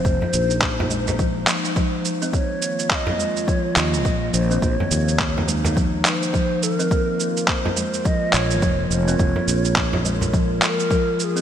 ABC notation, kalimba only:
X:1
M:4/4
L:1/16
Q:"Swing 16ths" 1/4=105
K:Bbm
V:1 name="Kalimba"
B, z3 B, B, A,2 F, z3 F, z2 C | B, z3 B, B, A,2 F, z3 F, z2 C | B, z3 B, B, A,2 F, z3 F, z2 C | B, z3 B, B, A,2 F, z3 F, z2 C |
B, z3 B, B, A,2 F, z3 F, z2 C |]